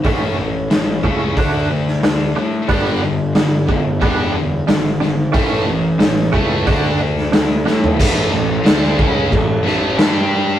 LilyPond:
<<
  \new Staff \with { instrumentName = "Clean electric guitar" } { \time 4/4 \key a \mixolydian \tempo 4 = 90 <a, a cis'>8 <a, a>8 <a, a>8 <a, a cis'>8 <d d' fis'>8 <d d'>8 <d d'>8 <d d'>8 | <g b d'>8 <g d'>8 <g d'>8 <g d'>8 <g b d'>8 <g d'>8 <g d'>8 <g d'>8 | <a, a cis'>8 <a, a>8 <a, a>8 <a, a cis'>8 <d d' fis'>8 <d d'>8 <d d'>8 <d d'>8 | r1 | }
  \new Staff \with { instrumentName = "Distorted electric guitar" } { \clef bass \time 4/4 \key a \mixolydian <a, e a>8 <a, e>8 <a, e>8 <a, e a>8 <d a d'>8 <d a>8 <d a>8 <d a>8 | <g, d g>8 <g, d>8 <g, d>8 <g, d>8 <g, d g>8 <g, d>8 <g, d>8 <g, d>8 | <a, e a>8 <a, e>8 <a, e>8 <a, e a>8 <d a d'>8 <d a>8 <d a>8 <d a>8 | <a, e a>8 <a, e>8 <d a d'>8 <cis gis cis'>8 <a, e>8 <a, e a>8 <g d' g'>4 | }
  \new Staff \with { instrumentName = "Distorted electric guitar" } { \clef bass \time 4/4 \key a \mixolydian r1 | <g, d g>8 <g, d>8 <g, d>8 <g, d>8 <g, d g>8 <g, d>8 <g, d>8 <g, d>8 | <a, e a>8 <a, e>8 <a, e>8 <a, e a>8 <d a d'>8 <d a>8 <d a>8 <d a>8 | <a, e a>8 <a, e>8 <d a d'>8 <cis gis cis'>8 <a, e>8 <a, e a>8 <g d' g'>4 | }
  \new Staff \with { instrumentName = "Picked electric bass" } { \clef bass \time 4/4 \key a \mixolydian a,,8 a,,8 a,,8 cis,8 d,8 d,8 d,8 a,8 | g,,8 g,,8 g,,8 g,,8 e,,4 gis,,4 | a,,8 a,,8 a,,8 cis,8 d,8 d,8 d,8 a,8 | a,,8 a,,8 d,8 cis,8 a,,8 a,,8 g,4 | }
  \new DrumStaff \with { instrumentName = "Drums" } \drummode { \time 4/4 <hho bd>4 <hho sn>8 bd8 <hho bd>8. sn16 <hho sn>4 | <hho bd>4 <hho sn>8 bd8 <hho bd>4 <hho sn>8 sn8 | <hho bd>4 <hho sn>8 bd8 <hho bd>8. sn16 <hho sn>8 sn16 tomfh16 | <cymc bd>4 <cymc sn>16 sn16 bd8 <cymc bd>8 sn8 <cymc sn>4 | }
>>